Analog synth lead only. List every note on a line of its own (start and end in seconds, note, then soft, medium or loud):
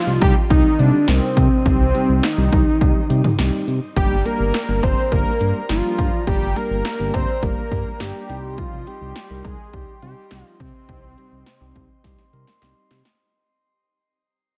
0.00 0.21 F4 loud
0.22 0.35 G4 loud
0.50 0.81 D#4 loud
0.79 1.10 D4 loud
1.08 1.65 C4 medium
1.66 2.25 C4 loud
2.24 3.68 D#4 loud
3.97 4.27 G4 loud
4.25 4.85 A#4 loud
4.83 5.11 C5 loud
5.12 5.66 A#4 loud
5.70 6.23 F4 loud
6.27 6.58 G4 loud
6.56 7.15 A#4 loud
7.14 7.44 C5 loud
7.43 8.02 A#4 loud
8.00 8.60 G4 loud
8.58 8.88 F4 loud
8.87 9.46 G4 loud
9.45 9.75 G#4 loud
9.73 10.02 G4 loud
10.02 10.44 G4 loud
10.44 10.56 F4 loud
10.60 12.58 C4 medium